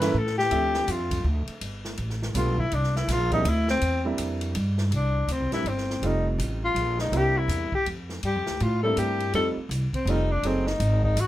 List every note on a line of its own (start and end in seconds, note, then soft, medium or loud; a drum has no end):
0.00 0.14 G2 medium
0.00 0.13 E3 medium
0.00 0.13 A3 medium
0.00 0.13 A#3 medium
0.00 0.13 C#4 medium
0.00 0.14 E4 medium
0.00 0.19 B4 medium
0.00 snare medium
0.00 ride medium
0.14 0.50 A2 medium
0.14 0.37 A4 medium
0.27 snare soft
0.38 0.92 G4 medium
0.38 snare soft
0.50 0.87 D2 medium
0.50 1.53 F3 medium
0.50 1.53 A3 medium
0.50 1.53 C4 medium
0.50 1.53 D4 medium
0.50 1.54 E5 medium
0.50 ride medium
0.74 snare soft
0.88 1.23 F2 loud
0.88 1.26 F4 medium
0.88 hi-hat pedal medium
0.88 ride medium
1.11 kick medium
1.11 ride medium
1.24 1.46 D2 loud
1.47 muted upright bass stroke soft
1.47 ride soft
1.61 1.97 G1 medium
1.61 ride medium
1.85 snare soft
1.97 2.34 A1 medium
1.97 ride medium
2.10 snare soft
2.22 snare soft
2.34 2.70 B1 loud
2.34 2.56 G3 medium
2.34 2.56 A3 medium
2.34 2.56 B3 medium
2.34 2.56 D4 medium
2.34 2.56 F4 medium
2.34 2.61 F4 medium
2.34 hi-hat pedal medium
2.34 ride medium
2.58 2.76 E4 loud
2.58 kick medium
2.71 3.07 C2 medium
2.71 2.96 D4 medium
2.71 ride medium
2.84 snare soft
2.96 3.13 E4 medium
2.96 snare soft
3.08 3.44 A#1 loud
3.08 3.32 F4 loud
3.08 snare soft
3.08 hi-hat pedal medium
3.08 ride medium
3.31 3.44 G3 medium
3.31 3.44 A#3 medium
3.31 3.44 C4 medium
3.31 3.45 D4 medium
3.31 3.50 D#4 medium
3.31 3.45 E4 medium
3.31 kick medium
3.31 ride soft
3.45 3.80 D2 loud
3.45 ride medium
3.49 3.70 E4 medium
3.68 4.03 C4 loud
3.68 snare medium
3.81 4.17 E2 medium
3.81 ride medium
4.05 4.53 G3 medium
4.05 4.53 A#3 medium
4.05 4.53 C4 medium
4.05 4.53 D4 medium
4.05 4.53 E4 medium
4.18 4.54 F2 loud
4.18 hi-hat pedal medium
4.18 ride medium
4.41 ride medium
4.55 4.90 G2 loud
4.55 ride medium
4.78 snare soft
4.91 5.27 C2 medium
4.91 ride medium
4.95 5.33 D4 medium
5.28 5.40 D2 medium
5.28 hi-hat pedal medium
5.28 ride medium
5.32 5.53 C4 medium
5.40 5.52 C2 soft
5.52 5.64 A#1 medium
5.52 5.64 G3 medium
5.52 5.65 A#3 medium
5.52 5.65 C4 medium
5.52 5.65 D4 medium
5.52 5.69 E4 medium
5.52 5.65 E4 medium
5.52 snare soft
5.52 ride soft
5.64 6.01 G1 medium
5.64 6.08 C4 medium
5.64 ride medium
5.78 snare soft
5.90 snare soft
6.02 6.38 F1 medium
6.02 7.05 G3 medium
6.02 7.05 A3 medium
6.02 7.05 C4 medium
6.02 7.05 D#4 medium
6.02 7.05 F4 medium
6.02 ride medium
6.06 6.27 D#4 medium
6.38 6.74 A1 medium
6.38 hi-hat pedal medium
6.38 ride medium
6.64 6.98 F4 loud
6.75 7.11 A#1 medium
6.75 ride medium
6.99 7.18 D#4 medium
6.99 snare medium
7.11 7.47 C2 medium
7.11 7.67 G3 medium
7.11 7.68 A#3 medium
7.11 7.68 C4 medium
7.11 7.68 D4 medium
7.11 7.68 E4 medium
7.11 ride medium
7.17 7.39 G4 loud
7.38 7.74 E4 medium
7.48 7.70 E2 loud
7.48 hi-hat pedal medium
7.48 ride medium
7.72 7.86 G4 medium
7.72 muted upright bass stroke soft
7.72 kick medium
7.86 8.22 F2 medium
7.86 ride medium
8.09 snare soft
8.23 8.35 G2 medium
8.23 8.64 G4 medium
8.23 ride medium
8.35 8.48 F2 medium
8.46 8.59 D2 medium
8.46 snare soft
8.60 8.96 A2 loud
8.60 8.82 F4 medium
8.60 ride medium
8.83 9.31 G3 medium
8.83 9.31 A#3 medium
8.83 9.31 C4 medium
8.83 9.31 D4 medium
8.83 9.32 E4 medium
8.83 9.00 A4 loud
8.97 9.32 G2 medium
8.97 9.34 G4 medium
8.97 hi-hat pedal medium
8.97 ride medium
9.20 ride soft
9.33 9.55 F2 medium
9.33 9.55 G3 medium
9.33 9.55 A3 medium
9.33 9.55 C4 medium
9.33 9.55 D#4 medium
9.33 9.55 F4 medium
9.33 9.48 A4 loud
9.33 ride medium
9.57 muted upright bass stroke soft
9.69 9.91 C2 loud
9.69 hi-hat pedal medium
9.69 ride medium
9.93 10.11 C4 medium
9.93 muted upright bass stroke soft
9.93 kick soft
9.93 ride soft
10.05 10.42 F1 medium
10.05 10.28 G3 medium
10.05 10.29 A3 medium
10.05 10.29 C4 medium
10.05 10.29 D#4 medium
10.05 ride medium
10.10 10.33 D#4 medium
10.10 10.29 F4 medium
10.32 10.48 D4 loud
10.43 10.79 F#1 medium
10.43 10.65 F#3 medium
10.43 10.65 A3 medium
10.43 10.65 C4 medium
10.43 10.69 C4 medium
10.43 10.66 D#4 medium
10.43 10.66 G#4 medium
10.43 ride medium
10.67 11.04 D#4 medium
10.67 snare soft
10.80 11.15 G#1 loud
10.80 hi-hat pedal soft
10.80 ride medium
11.03 11.22 D#4 medium
11.03 kick soft
11.16 11.27 A1 medium
11.16 hi-hat pedal medium
11.16 ride medium
11.21 11.27 F#4 loud